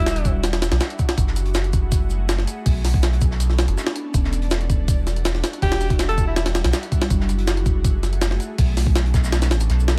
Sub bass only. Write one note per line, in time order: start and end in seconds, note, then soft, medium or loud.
0.00 0.24 E1 loud
0.25 0.70 E1 medium
0.71 0.80 B1 loud
1.18 1.72 F#1 loud
1.73 2.46 F#1 medium
2.66 3.20 B1 loud
3.22 3.67 B1 medium
3.68 3.76 F#1 loud
4.14 4.68 E1 loud
4.70 5.42 E1 medium
5.62 6.16 E1 loud
6.18 6.63 E1 medium
6.64 6.72 B1 loud
7.10 7.65 F#1 loud
7.66 8.39 F#1 medium
8.58 9.13 B1 loud
9.14 9.53 B1 medium
9.51 9.68 A1 loud
9.70 9.99 B1 medium